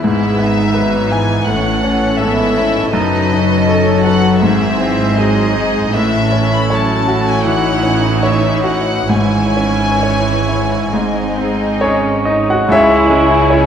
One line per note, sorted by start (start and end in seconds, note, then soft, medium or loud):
0.04 1.45 G#1 medium
0.04 1.44 G#2 medium
0.04 1.45 G#2 medium
0.04 0.72 G#3 soft
0.04 0.71 B3 medium
0.04 0.38 E4 soft
0.04 0.72 G#4 soft
0.04 1.08 E5 medium
0.38 0.97 B3 soft
0.38 1.49 D#4 medium
0.74 1.12 F#3 medium
0.74 1.47 B3 medium
0.74 1.33 B4 soft
0.74 1.50 B4 soft
1.11 1.48 E3 medium
1.11 1.48 E4 soft
1.11 1.48 G#5 medium
1.47 2.22 A1 medium
1.47 2.18 A2 medium
1.47 2.22 A2 medium
1.47 1.85 C#4 medium
1.47 2.21 F#5 medium
1.51 2.93 E3 medium
1.51 2.22 C#4 soft
1.51 2.93 A4 medium
1.84 2.43 C#4 soft
1.84 2.21 C#4 medium
2.19 2.95 G#1 medium
2.19 2.95 G#2 medium
2.19 2.57 B3 medium
2.19 2.80 A4 medium
2.19 2.93 E5 medium
2.25 2.96 E4 medium
2.57 2.95 C#4 medium
2.57 2.94 E4 medium
2.92 4.39 F#1 medium
2.92 4.37 F#2 medium
2.92 4.38 F#3 medium
2.92 3.30 D#4 medium
2.92 3.67 B4 medium
2.92 4.01 D#5 medium
2.96 4.40 F#2 medium
2.96 3.68 A4 medium
3.32 4.42 C#4 medium
3.32 3.91 D#4 soft
3.69 4.27 A4 medium
3.69 4.43 A4 medium
3.69 4.06 C#5 medium
4.03 4.42 F#4 soft
4.03 4.42 B4 medium
4.03 4.40 F#5 medium
4.40 5.93 G#1 medium
4.40 5.93 G#2 medium
4.40 5.89 G#2 medium
4.40 4.80 D#3 medium
4.40 5.16 C4 medium
4.40 5.16 G#4 medium
4.40 5.93 C5 medium
4.40 5.14 E5 medium
4.79 5.17 E3 medium
4.79 5.40 C4 soft
5.14 5.55 F#3 medium
5.14 5.94 D#4 medium
5.14 5.92 G#4 medium
5.14 5.79 G#4 medium
5.14 5.92 D#5 medium
5.55 5.94 G#3 medium
5.55 5.93 D#4 medium
5.92 9.06 A1 medium
5.92 9.06 A2 medium
5.92 7.41 A2 medium
5.92 6.68 E3 medium
5.92 6.68 C#4 medium
5.92 9.10 E4 medium
5.92 6.68 A4 medium
5.92 6.51 E5 medium
6.32 6.93 C#4 soft
6.52 6.71 B5 medium
6.70 7.43 F#3 medium
6.70 7.44 C#4 medium
6.70 7.44 A4 soft
6.70 7.30 C#5 medium
6.70 7.27 A5 medium
7.08 7.68 F#4 soft
7.27 7.45 G#5 medium
7.43 8.07 E3 soft
7.43 7.82 F#3 medium
7.43 9.10 D#4 medium
7.43 9.09 C#5 soft
7.43 8.22 F#5 medium
7.82 9.08 E3 medium
7.82 8.48 C#4 soft
8.23 8.92 C#5 soft
8.23 8.65 E5 medium
8.64 9.09 F#4 soft
8.64 9.09 F#5 medium
9.09 10.90 G#1 medium
9.09 10.88 G#2 medium
9.09 10.89 G#2 medium
9.09 10.89 E3 medium
9.09 10.89 C#4 medium
9.09 10.90 E4 medium
9.09 10.89 C#5 medium
9.09 11.81 G#5 medium
9.57 10.30 C#4 soft
10.03 10.75 C#5 soft
10.49 10.93 E4 soft
10.92 12.44 G#1 soft
10.92 12.44 G#2 medium
10.92 12.65 G#2 medium
10.92 11.81 G#3 soft
10.92 11.80 C4 soft
10.92 12.47 D#4 soft
10.92 12.47 D#5 soft
11.38 12.08 C4 soft
11.81 12.23 C#4 medium
11.81 12.24 C#4 medium
11.81 12.24 G#4 medium
11.81 12.23 C#5 medium
11.81 12.24 D#5 soft
12.25 12.69 D#4 soft
12.25 12.48 D#4 medium
12.25 12.46 D#5 medium
12.48 12.69 F#4 medium
12.48 12.69 F#5 medium
12.52 12.70 F#4 soft
12.67 13.66 C#2 medium
12.67 13.66 G#3 medium
12.67 12.88 C#4 medium
12.67 13.66 E4 medium
12.67 12.89 E4 medium
12.67 13.66 G#4 medium
12.67 13.66 C#5 medium
12.67 13.66 G#5 medium
12.72 13.66 E4 medium
12.72 13.49 C#5 medium
12.72 13.66 E5 medium
12.89 13.10 G#3 medium
12.89 13.10 E4 medium
12.89 13.11 G#4 soft
13.10 13.66 G#3 medium
13.10 13.30 C#4 medium
13.10 13.32 E4 medium
13.32 13.51 G#3 medium
13.32 13.52 E4 medium
13.32 13.52 G#4 medium
13.50 13.66 C#4 medium
13.50 13.66 E4 medium
13.50 13.66 C#5 medium